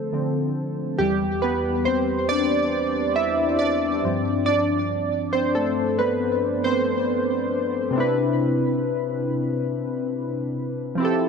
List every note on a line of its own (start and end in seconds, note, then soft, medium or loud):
0.00 1.01 A3 medium
0.00 1.01 A4 medium
0.13 0.52 D3 medium
0.13 0.52 F3 soft
0.13 0.52 C4 medium
0.98 3.99 E2 medium
0.98 4.00 E3 medium
0.98 1.40 G3 medium
0.98 1.39 G4 loud
1.42 1.84 B3 medium
1.42 1.87 B4 medium
1.85 2.27 C4 medium
1.85 2.30 C5 loud
2.29 3.13 D4 medium
2.29 3.19 D5 loud
3.16 3.58 E4 medium
3.16 3.61 E5 loud
3.59 4.43 D4 medium
3.59 4.45 D5 loud
4.04 7.47 G2 medium
4.04 7.48 F3 medium
4.04 5.34 C4 medium
4.46 5.30 D4 medium
4.46 5.36 D5 loud
5.33 5.54 C4 medium
5.33 5.56 C5 loud
5.55 5.97 A3 medium
5.55 6.00 A4 medium
5.99 6.61 B3 medium
5.99 6.66 B4 medium
6.64 7.48 C4 medium
6.64 7.47 C5 medium
7.91 10.93 C3 medium
7.91 10.94 C4 medium
7.95 10.95 D4 medium
7.95 10.96 E4 medium
8.00 10.98 B4 medium
10.95 11.29 F3 medium
10.95 11.29 C4 medium
11.00 11.29 E4 medium
11.00 11.29 G4 medium
11.05 11.29 A4 medium